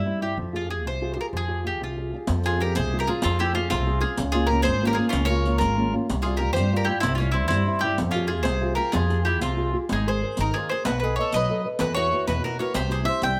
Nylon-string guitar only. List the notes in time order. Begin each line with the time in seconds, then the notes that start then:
0.06 G3 C4 E4
0.21 G3 C4 E4
0.38 F3
0.53 F4 G4 G#4
0.70 G4 G#4
0.86 C3
1.01 F4 G4 G#4
1.16 F4 G4 G#4
1.33 F3
1.48 F4 G4 G#4
1.64 F4 G4 G#4
1.81 C3
1.97 F4 G4 G#4
2.13 F4 G4 G#4
2.28 F3
2.45 C4 F4 G#4
2.61 C4 F4 G#4
2.77 C3
2.93 C4 F4 G#4
3.08 C4 F4 G#4
3.25 F3
3.40 C4 F4 G#4
3.56 C4 F4 G#4
3.71 C3
3.86 C4 F4 G#4
4.03 C4 F4 G#4
4.18 C#3
4.34 A#3 C#4 F4
4.50 A#3 C#4
4.66 G#3
4.82 A#3 C#4 F4
4.98 A#3 C#4 F4
5.13 C#3
5.29 A#3 C#4 F4
5.45 A#3 C#4 F4
5.61 G#3
5.76 A#3 C#4 F4
5.92 A#3 C#4 F4
6.09 C3
6.25 G3 C4 F4
6.40 G3 C4 F4
6.57 G3
6.72 G3 C4 F4
6.87 G3 C4 F4
7.03 C3
7.19 G3 C4 E4
7.33 G3 C4 E4
7.51 G3
7.67 G3 C4 E4
7.83 G3 C4 E4
7.98 F3
8.14 F4 G4 G#4
8.31 F4 G4 G#4
8.45 C3
8.61 F4 G4 G#4
8.78 F4 G4 G#4
8.94 F3
9.09 F4 G4 G#4
9.25 F4 G4 G#4
9.40 C3
9.57 F4 G4 G#4
9.73 F4 G4 G#4
9.90 G#3
10.07 G#4 A#4 C5
10.22 G#4 A#4 C5
10.39 D#3
10.54 G#4 A#4 C5
10.72 G#4 A#4 C5
10.87 B3
11.03 A4 B4 D#5
11.19 A4 B4 D#5
11.35 F#3
11.50 A4 B4 D#5
11.65 A4 B4 D#5
11.80 E3
11.96 E4 F#4 B4
12.12 E4 F#4 B4
12.28 B2
12.44 E4 F#4 B4
12.59 E4 F#4 B4
12.74 C3
12.89 C4 E4 G4
13.04 C4 E4 G4
13.22 G3